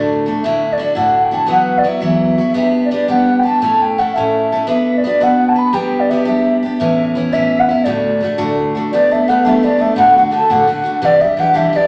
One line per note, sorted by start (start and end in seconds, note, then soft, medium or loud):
0.00 0.27 D2 medium
0.00 0.27 A2 medium
0.00 0.27 D3 medium
0.00 0.27 A3 medium
0.00 0.27 D4 medium
0.00 0.25 F#4 medium
0.26 0.43 D3 soft
0.26 0.44 A3 medium
0.26 0.44 D4 medium
0.26 0.43 F#4 medium
0.43 0.80 D2 medium
0.43 0.80 A2 medium
0.43 0.76 D3 medium
0.43 0.78 D4 medium
0.43 0.78 E4 medium
0.43 0.80 F#4 medium
0.43 0.74 E5 loud
0.72 0.80 D5 medium
0.78 0.95 D3 medium
0.78 0.95 D4 medium
0.78 0.94 E4 medium
0.78 0.94 F#4 medium
0.78 0.95 D5 medium
0.95 1.33 D2 medium
0.95 1.32 A2 medium
0.95 1.32 D3 medium
0.95 1.32 D4 medium
0.95 1.31 E4 medium
0.95 1.30 F#4 medium
0.95 1.26 F#5 medium
1.25 1.35 G5 medium
1.31 1.47 D3 medium
1.31 1.48 D4 medium
1.31 1.47 E4 medium
1.31 1.47 F#4 medium
1.31 1.49 A5 loud
1.46 1.84 E3 medium
1.46 1.82 F#3 medium
1.46 1.83 B3 medium
1.46 1.83 E4 medium
1.46 1.85 F#4 medium
1.51 1.79 F#5 loud
1.78 1.89 D5 medium
1.83 2.01 F#3 medium
1.83 2.00 B3 medium
1.83 2.00 E4 medium
1.83 1.99 F#4 medium
1.88 2.03 E5 medium
2.00 2.38 E3 medium
2.00 2.38 F#3 medium
2.00 2.38 B3 medium
2.00 2.38 E4 medium
2.00 2.37 F#4 medium
2.05 2.53 E5 loud
2.38 2.53 B3 soft
2.38 2.55 E4 medium
2.38 2.55 F#4 medium
2.54 2.90 G3 medium
2.54 2.90 B3 medium
2.54 2.91 D4 medium
2.54 2.92 G4 medium
2.54 2.81 E5 loud
2.84 2.91 D5 medium
2.91 3.08 G3 medium
2.91 3.08 B3 medium
2.91 3.07 D4 medium
2.91 3.07 G4 medium
2.91 3.07 D5 medium
3.08 3.45 G3 medium
3.08 3.45 B3 medium
3.08 3.44 D4 medium
3.08 3.42 G4 medium
3.08 3.40 F#5 loud
3.39 3.46 G5 medium
3.43 3.62 B3 medium
3.43 3.61 D4 medium
3.43 3.60 G4 medium
3.43 3.61 A5 loud
3.61 3.97 A2 medium
3.61 3.97 A3 medium
3.61 3.98 C#4 medium
3.61 3.98 E4 medium
3.61 3.98 A4 medium
3.61 3.83 A5 loud
3.81 4.00 G5 loud
3.98 4.14 A3 medium
3.98 4.15 C#4 medium
3.98 4.15 E4 medium
3.98 4.14 A4 medium
3.98 4.15 F#5 medium
4.14 4.52 A3 medium
4.14 4.51 E4 medium
4.14 4.51 A4 medium
4.14 4.67 E5 loud
4.18 4.52 A2 medium
4.18 4.52 C#4 medium
4.52 4.67 C#4 medium
4.52 4.68 E4 medium
4.52 4.68 A4 medium
4.67 5.03 B3 medium
4.67 5.03 D4 medium
4.67 5.04 F#4 medium
4.67 5.07 B4 medium
4.67 4.99 E5 medium
4.97 5.04 D5 medium
5.04 5.20 B3 medium
5.04 5.20 D4 medium
5.04 5.20 F#4 medium
5.04 5.19 B4 medium
5.04 5.24 D5 medium
5.20 5.72 B3 medium
5.20 5.57 D4 medium
5.20 5.55 F#4 medium
5.20 5.55 B4 medium
5.20 5.50 F#5 loud
5.49 5.59 A5 medium
5.56 5.73 D4 soft
5.56 5.73 F#4 medium
5.56 5.72 B4 medium
5.56 5.75 B5 loud
5.73 6.09 G3 medium
5.73 6.09 B3 medium
5.73 6.09 D4 medium
5.73 6.10 G4 medium
5.73 6.01 G5 loud
6.00 6.11 D5 medium
6.09 6.26 G3 medium
6.09 6.26 B3 medium
6.09 6.24 D4 medium
6.09 6.24 G4 medium
6.09 6.26 E5 medium
6.25 6.63 G3 medium
6.25 6.62 B3 medium
6.25 6.62 D4 medium
6.25 6.61 G4 medium
6.25 6.56 E5 loud
6.63 6.79 B3 soft
6.63 6.80 D4 medium
6.63 6.79 G4 medium
6.79 7.15 A2 medium
6.79 7.14 E3 medium
6.79 7.15 B3 medium
6.79 7.16 C#4 medium
6.79 7.16 E4 medium
6.79 7.05 E5 loud
7.15 7.32 E3 medium
7.15 7.32 B3 medium
7.15 7.33 C#4 medium
7.15 7.31 E4 medium
7.15 7.34 C#5 loud
7.33 7.69 A2 medium
7.33 7.69 E3 medium
7.33 7.69 B3 medium
7.33 7.69 C#4 medium
7.33 7.67 E4 medium
7.33 7.61 E5 loud
7.59 7.70 F#5 medium
7.68 7.86 B3 medium
7.68 7.86 C#4 medium
7.68 7.85 E4 medium
7.68 7.85 E5 loud
7.84 8.21 D2 medium
7.84 8.21 A2 medium
7.84 8.20 D3 medium
7.84 8.22 A3 medium
7.84 8.23 D4 medium
7.84 8.22 F#4 medium
7.84 8.56 D5 medium
8.20 8.37 D3 medium
8.20 8.37 A3 medium
8.20 8.37 D4 medium
8.20 8.37 F#4 medium
8.38 8.74 D2 medium
8.38 8.74 A2 medium
8.38 8.78 D3 medium
8.38 8.77 A3 medium
8.38 8.76 D4 medium
8.38 8.74 F#4 medium
8.75 8.92 D3 medium
8.75 8.92 A3 medium
8.75 8.92 D4 medium
8.75 8.91 F#4 medium
8.91 9.11 G3 medium
8.91 9.11 A3 medium
8.91 9.11 B3 medium
8.91 9.10 D4 medium
8.91 9.13 D5 medium
9.11 9.28 A3 soft
9.11 9.28 B3 medium
9.11 9.27 D4 medium
9.11 9.29 E5 loud
9.28 9.44 G3 medium
9.28 9.44 A3 medium
9.28 9.45 B3 medium
9.28 9.43 D4 medium
9.28 9.44 F#5 loud
9.45 9.62 G3 medium
9.45 9.62 A3 medium
9.45 9.63 B3 medium
9.45 9.63 D4 medium
9.45 9.57 E5 loud
9.57 9.65 E5 medium
9.63 9.79 G3 medium
9.63 9.79 A3 medium
9.63 9.79 B3 medium
9.63 9.77 D4 medium
9.63 9.82 D5 medium
9.78 9.97 A3 medium
9.78 9.96 B3 medium
9.78 9.95 D4 medium
9.78 9.96 E5 loud
9.96 10.15 D2 medium
9.96 10.15 A2 medium
9.96 10.16 D3 medium
9.96 10.16 A3 medium
9.96 10.16 D4 medium
9.96 10.15 F#4 medium
9.96 10.14 F#5 loud
10.16 10.30 D3 medium
10.16 10.31 A3 medium
10.16 10.32 D4 soft
10.16 10.32 F#4 medium
10.16 10.31 F#5 loud
10.31 10.48 D3 medium
10.31 10.48 A3 medium
10.31 10.49 D4 medium
10.31 10.48 F#4 medium
10.31 10.52 A5 loud
10.50 10.69 D2 medium
10.50 10.69 A2 medium
10.50 10.66 D3 medium
10.50 10.67 A3 medium
10.50 10.68 D4 medium
10.50 10.68 F#4 medium
10.50 11.06 F#5 loud
10.67 10.84 D3 medium
10.67 10.85 A3 medium
10.67 10.84 D4 medium
10.67 10.82 F#4 medium
10.84 11.01 D3 medium
10.84 11.02 A3 medium
10.84 11.01 D4 medium
10.84 11.00 F#4 medium
11.02 11.20 C3 medium
11.02 11.20 E3 medium
11.02 11.21 G3 medium
11.02 11.21 D4 medium
11.02 11.19 G4 medium
11.02 11.22 D5 loud
11.21 11.37 G3 medium
11.21 11.37 D4 soft
11.21 11.37 G4 medium
11.21 11.41 E5 medium
11.37 11.53 E3 medium
11.37 11.54 G3 medium
11.37 11.53 D4 medium
11.37 11.52 G4 medium
11.37 11.58 F#5 loud
11.54 11.74 C3 medium
11.54 11.72 E3 medium
11.54 11.73 G3 medium
11.54 11.73 D4 medium
11.54 11.73 G4 medium
11.54 11.77 E5 loud
11.73 11.87 E3 medium
11.73 11.87 G3 medium
11.73 11.87 D4 medium
11.73 11.87 G4 medium
11.73 11.87 D5 medium